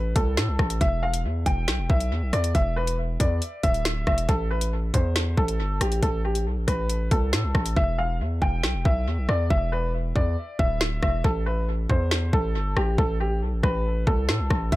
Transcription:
Already playing: 808-style bass A1, upright piano B4
0.16 808-style bass C2, upright piano A4, kick, closed hi-hat
0.37 808-style bass A2, snare, closed hi-hat
0.48 808-style bass C2
0.59 808-style bass A1, kick, cross-stick
0.70 closed hi-hat
0.81 808-style bass E1, upright piano E5, kick, closed hi-hat
1.03 upright piano F5
1.14 closed hi-hat
1.24 808-style bass E2
1.46 808-style bass E1, upright piano G5, kick, closed hi-hat
1.68 808-style bass B1, snare, closed hi-hat
1.79 808-style bass E1
1.90 808-style bass B1, upright piano E5, kick
2.00 closed hi-hat
2.11 808-style bass E2
2.22 808-style bass B1
2.33 808-style bass E2, upright piano D5, cross-stick, closed hi-hat
2.44 closed hi-hat
2.55 808-style bass E1, upright piano E5, kick, closed hi-hat
2.76 upright piano B4
2.87 closed hi-hat
3.20 808-style bass E2, upright piano D5, kick, closed hi-hat
3.42 closed hi-hat
3.63 808-style bass D1, upright piano E5, kick, closed hi-hat
3.74 closed hi-hat
3.85 snare, closed hi-hat
4.07 808-style bass E1, upright piano E5, kick, cross-stick
4.18 closed hi-hat
4.29 808-style bass A1, upright piano A4, kick, closed hi-hat
4.51 upright piano B4
4.61 closed hi-hat
4.94 808-style bass E2, upright piano C5, kick, closed hi-hat
5.16 snare, closed hi-hat
5.37 808-style bass A1, upright piano A4, kick
5.48 closed hi-hat
5.59 808-style bass G1
5.81 808-style bass A1, upright piano G4, cross-stick, closed hi-hat
5.92 closed hi-hat
6.03 808-style bass A1, upright piano A4, kick, closed hi-hat
6.25 upright piano G4
6.35 closed hi-hat
6.46 808-style bass B1
6.57 808-style bass A1
6.68 808-style bass A1, upright piano B4, kick, cross-stick, closed hi-hat
6.90 closed hi-hat
7.11 808-style bass C2, upright piano A4, kick, closed hi-hat
7.33 808-style bass A2, snare, closed hi-hat
7.44 808-style bass C2
7.55 808-style bass A1, kick, cross-stick
7.66 closed hi-hat
7.77 808-style bass E1, upright piano E5, kick
7.98 upright piano F5
8.20 808-style bass E2
8.42 808-style bass E1, upright piano G5, kick
8.63 808-style bass B1, snare
8.74 808-style bass E1
8.85 808-style bass B1, upright piano E5, kick
9.07 808-style bass E2
9.18 808-style bass B1
9.29 808-style bass E2, upright piano D5, cross-stick
9.50 808-style bass E1, upright piano E5, kick
9.72 upright piano B4
10.16 808-style bass E2, upright piano D5, kick
10.59 808-style bass D1, upright piano E5, kick
10.81 snare
11.03 808-style bass E1, upright piano E5, kick, cross-stick
11.24 808-style bass A1, upright piano A4, kick
11.46 upright piano B4
11.90 808-style bass E2, upright piano C5, kick
12.11 snare
12.33 808-style bass A1, upright piano A4, kick
12.55 808-style bass G1
12.77 808-style bass A1, upright piano G4, cross-stick
12.98 808-style bass A1, upright piano A4, kick
13.20 upright piano G4
13.42 808-style bass B1
13.53 808-style bass A1
13.63 808-style bass A1, upright piano B4, kick, cross-stick
14.07 808-style bass C2, upright piano A4, kick
14.29 808-style bass A2, snare
14.40 808-style bass C2
14.50 808-style bass A1, kick, cross-stick
14.72 808-style bass E1, upright piano E5, kick, closed hi-hat

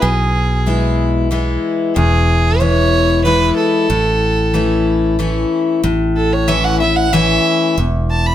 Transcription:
0.01 fingered electric bass B1, steel-string acoustic guitar B2, fiddle G#4
0.66 steel-string acoustic guitar E3 G#3 B3 E4
1.31 steel-string acoustic guitar E3 G#3 B3 E4
1.96 fingered electric bass E1, steel-string acoustic guitar E2, fiddle G#4
2.59 steel-string acoustic guitar E3 G#3 B3 E4, fiddle C#5
3.24 steel-string acoustic guitar E3 G#3 B3 E4, fiddle B4
3.57 fiddle A4
3.90 fingered electric bass A1, steel-string acoustic guitar A2
4.54 steel-string acoustic guitar E3 A3 C#4 E4
5.19 steel-string acoustic guitar E3 A3 C#4 E4
5.83 fingered electric bass A1, steel-string acoustic guitar A2
6.17 fiddle A4
6.33 fiddle C#5
6.48 steel-string acoustic guitar E3 A3 C#4 E4, fiddle E5
6.64 fiddle F#5
6.80 steel-string acoustic guitar C#4 E4, fiddle E5
6.96 fiddle F#5
7.13 steel-string acoustic guitar E3 A3 C#4 E4, fiddle E5
7.78 fingered electric bass E1, steel-string acoustic guitar E2
8.10 fiddle A5
8.26 fiddle B5

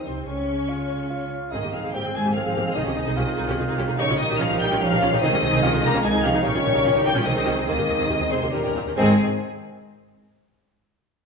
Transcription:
Already playing: bassoon C4
0.05 double bass section C2, trombone section C3, cello section C3, french horn section C4, viola section C4, violin section C5 C6, flute C5
0.25 double bass section C#2, trombone section C#3, cello section C#3, french horn section C#4, bassoon C#4, viola section C#4, flute C#5, violin section C#5 C#6
0.69 bassoon F4
1.10 bassoon F4
1.51 double bass section G#1, cello section D#3, trombone section D#3 G#3, french horn section C4 G#4, viola section C4 G#4, bassoon D#4, flute D#5, violin section D#5 D#6
1.63 double bass section G#1, viola section A#3 G4
1.73 double bass section G#1, cello section F3, viola section C4 G#4, violin section F5 F6, flute F5
1.84 double bass section G#1, viola section C4 G#4
1.94 double bass section G#1, cello section G3, viola section A#3 G4, bassoon C4, violin section G5 G6, flute G5
2.05 double bass section G#1, viola section C4 G#4
2.15 double bass section G#1, cello section G#3, viola section C4 G#4, flute G#5, violin section G#5 G#6
2.26 double bass section G#1, viola section A#3 G4
2.35 double bass section G#1, cello section F3, bassoon C4, viola section C4 G#4, violin section F5 F6, flute F5
2.46 double bass section G#1, viola section C4 G#4
2.56 double bass section G#1, viola section A#3 G4
2.66 double bass section G#1, viola section C4 G#4
2.75 double bass section C2, cello section D#3, viola section D#4 G#4, bassoon D#4, violin section D#5 D#6, flute D#5
2.87 double bass section C2, viola section C#4 G4
2.96 double bass section C2, viola section D#4 G#4
3.06 double bass section C2, viola section D#4 G#4
3.17 double bass section C2, viola section C#4 G4, bassoon F4
3.27 double bass section C2, viola section D#4 G#4
3.37 double bass section C2, viola section D#4 G#4
3.48 double bass section C2, viola section C#4 G4
3.58 double bass section C2, viola section D#4 G#4
3.68 double bass section C2, viola section D#4 G#4
3.79 double bass section C2, viola section C#4 G4
3.88 double bass section C2, viola section D#4 G#4
3.98 double bass section A#1, cello section C#3, trombone section D#3 G3, french horn section A#3 D#4, viola section D#4 G4, bassoon D#4, violin section C#5 C#6, flute C#5
4.09 double bass section A#1, viola section C#4 F4
4.19 double bass section A#1, cello section D#3, viola section D#4 G4, violin section D#5 D#6, flute D#5
4.29 double bass section A#1, viola section D#4 G4
4.40 double bass section A#1, cello section F3, viola section C#4 F4, violin section F5 F6, flute F5
4.50 double bass section A#1, viola section D#4 G4
4.60 double bass section A#1, cello section G3, viola section D#4 G4, flute G5, violin section G5 G6
4.71 double bass section A#1, viola section C#4 F4
4.80 double bass section A#1, cello section F3, bassoon C#4, viola section D#4 G4, flute F5, violin section F5 F6
4.91 double bass section A#1, viola section D#4 G4
5.02 double bass section A#1, viola section C#4 F4
5.12 double bass section A#1, viola section D#4 G4
5.21 double bass section C2, trombone section D#3 G#3, cello section D#3, bassoon C4, french horn section C4 D#4, viola section D#4 G#4, flute D#5, violin section D#5 D#6
5.32 double bass section C2, viola section C#4 G4
5.42 double bass section C2, viola section D#4 G#4
5.52 double bass section C2, viola section D#4 G#4
5.62 double bass section C2, viola section C#4 G4, bassoon F4
5.73 double bass section C2, viola section D#4 G#4
5.83 double bass section C2, cello section A#3, viola section D#4 G#4, violin section A#5 A#6, flute A#5
5.94 double bass section C2, viola section C#4 G4
6.03 double bass section C2, trombone section D#3 G#3, cello section G#3, french horn section C4 D#4, viola section D#4 G#4, bassoon D#4, violin section G#5 G#6, flute G#5
6.14 double bass section C2, viola section D#4 G#4
6.23 double bass section C2, cello section F3, viola section C#4 G4, violin section F5 F6, flute F5
6.34 double bass section C2, viola section D#4 G#4
6.43 double bass section A#1, cello section C#3, trombone section D#3 G3, french horn section A#3 D#4, bassoon C#4, viola section D#4 G4, violin section C#5 C#6, flute C#5
6.55 double bass section A#1, viola section C#4 F4
6.64 double bass section A#1, viola section D#4 G4
6.74 double bass section A#1, viola section D#4 G4
6.85 double bass section A#1, viola section C#4 F4
6.94 double bass section A#1, viola section D#4 G4
7.05 double bass section A#1, cello section G3, viola section D#4 G4, violin section G5 G6, flute G5
7.16 double bass section A#1, viola section C#4 F4
7.24 double bass section C2, cello section D#3, trombone section D#3 G#3, french horn section C4 D#4, bassoon C4, viola section D#4 G#4, violin section D#5 D#6, flute D#5
7.36 double bass section C2, viola section D#4 G#4
7.46 double bass section C2, viola section C#4 G4
7.56 double bass section C2, viola section D#4 G#4
7.66 double bass section D#2, trombone section D#3 G#3, cello section D#3, bassoon A#3, viola section C4 G#4, french horn section C4 D#4, violin section D#5 D#6, flute D#5
7.78 double bass section D#2, viola section A#3 G4
7.89 double bass section D#2, viola section C4 G#4
7.99 double bass section D#2, viola section C4 G#4
8.09 double bass section D#2, bassoon G#3, viola section A#3 G4
8.20 double bass section D#2, viola section C4 G#4
8.30 double bass section D#2, cello section C3, viola section C4 G#4, violin section C5 C6, flute C5
8.42 double bass section D#2, viola section A#3 G4
8.52 double bass section D#2, cello section A#2, trombone section D#3 G3, bassoon G3, french horn section C#4 D#4, viola section C#4 G4, violin section A#4 A#5, flute A#4
8.64 double bass section D#2, viola section C#4 G4
8.76 double bass section D#2, viola section C4 F4
8.86 double bass section D#2, viola section C#4 G4
8.96 double bass section G#1, trombone section D#3 G#3, cello section G#3, french horn section C4 D#4, bassoon C4, viola section C4 G#4, violin section G#4 G#5, flute D#5

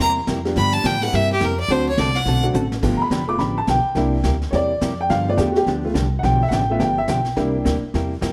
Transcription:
0.00 upright bass E2, hollow-body jazz guitar C3 G3 A#3 E4 G4, fiddle A#5
0.27 upright bass F2, hollow-body jazz guitar C3 G3 A#3 E4 G4, snare, hi-hat pedal
0.45 upright piano G3 B3 D4 F4 G4, snare
0.56 upright bass G2, hollow-body jazz guitar D3 F3 B3 D4 G4, fiddle B5, brush sweep, snare
0.73 fiddle A5
0.84 upright bass A2, hollow-body jazz guitar D3 F3 B3 D4 G4, fiddle G5, snare, hi-hat pedal
1.01 upright piano G3 A#3 C4 E4 G4, fiddle F#5, snare
1.13 upright bass G2, hollow-body jazz guitar C3 G3 A#3 E4 G4, fiddle E5, brush sweep, snare
1.33 fiddle G4
1.40 upright bass F2, hollow-body jazz guitar C3 G3 A#3 E4 G4, fiddle A#4, snare, hi-hat pedal
1.60 fiddle D5
1.68 upright bass D2, hollow-body jazz guitar D3 A3 C4 F#4 A4, upright piano F#3 A3 C4 D4 F#4, fiddle C5, brush sweep, snare
1.89 fiddle C#5
1.98 upright bass C2, hollow-body jazz guitar D3 A3 C4 F#4 A4, fiddle D5, snare, hi-hat pedal
2.15 fiddle F#5, snare
2.25 upright bass B1, hollow-body jazz guitar D3 A3 C4 F#4 A4, brush sweep, snare
2.43 upright piano F#3 A3 C4 D4 F#4
2.54 upright bass A1, hollow-body jazz guitar D3 A3 C4 F#4 A4, hi-hat pedal, mid tom
2.72 snare
2.82 upright bass G1, hollow-body jazz guitar D3 F3 B3 D4 G4, upright piano A3 B3 F4, brush sweep, kick, snare, crash
2.97 upright piano A#5
3.02 upright piano B5
3.10 upright bass F1, hollow-body jazz guitar D3 F3 B3 D4 G4, snare, hi-hat pedal
3.27 upright piano A3 B3 F4 D6
3.39 upright bass A1, hollow-body jazz guitar D3 F3 B3 D4 G4, upright piano B5, brush sweep, snare
3.58 upright piano A5
3.67 upright bass B1, hollow-body jazz guitar D3 F3 B3 D4 G4, upright piano G5, snare, hi-hat pedal
3.85 muted upright bass stroke
3.95 upright bass C2, hollow-body jazz guitar C3 G3 A#3 E4 G4, upright piano A#3 D4 E4, brush sweep, snare
4.24 upright bass D2, hollow-body jazz guitar C3 G3 A#3 E4 G4, snare, hi-hat pedal
4.42 snare
4.51 upright bass E2, hollow-body jazz guitar C3 G3 A#3 E4 G4, upright piano C#5, brush sweep, snare
4.55 upright piano D5
4.81 upright bass F2, hollow-body jazz guitar C3 G3 A#3 E4 G4, snare, hi-hat pedal
5.01 upright piano G5
5.10 upright bass G2, hollow-body jazz guitar D3 F3 B3 D4 G4, upright piano F5, brush sweep, snare
5.28 upright piano A3 B3 F4 D5
5.37 upright bass E2, hollow-body jazz guitar D3 F3 B3 D4 G4, upright piano G4, snare, hi-hat pedal
5.52 upright piano F#4, snare
5.57 upright piano G4
5.66 upright bass D2, hollow-body jazz guitar D3 F3 B3 D4 G4, brush sweep, snare
5.84 upright piano A3 B3 F4
5.94 upright bass C2, hollow-body jazz guitar D3 F3 B3 D4 G4, snare, hi-hat pedal
6.19 upright piano F#5
6.23 upright bass B1, hollow-body jazz guitar D3 F3 B3 D4 G4, upright piano G5, brush sweep, snare
6.43 upright piano E5
6.48 upright bass A1, hollow-body jazz guitar D3 F3, upright piano F#5, snare, hi-hat pedal
6.53 hollow-body jazz guitar B3 D4 G4, upright piano G5
6.70 upright piano A3 B3 F4 E5
6.79 upright bass G1, hollow-body jazz guitar D3 F3 B3 D4 G4, upright piano G5, brush sweep, snare
6.98 upright piano E5
7.08 upright bass B1, hollow-body jazz guitar D3 F3 B3 D4 G4, upright piano G5, snare, hi-hat pedal
7.25 snare
7.37 upright bass C2, hollow-body jazz guitar C3 G3 A#3 E4 G4, upright piano A#3 D4 E4, brush sweep, snare
7.64 upright bass D2, hollow-body jazz guitar C3 G3 A#3 E4 G4, snare, hi-hat pedal
7.83 muted upright bass stroke
7.94 upright bass E2, hollow-body jazz guitar C3 G3 A#3 E4 G4, brush sweep, snare
8.21 upright bass F2, hollow-body jazz guitar C3 G3 A#3 E4 G4, snare, hi-hat pedal

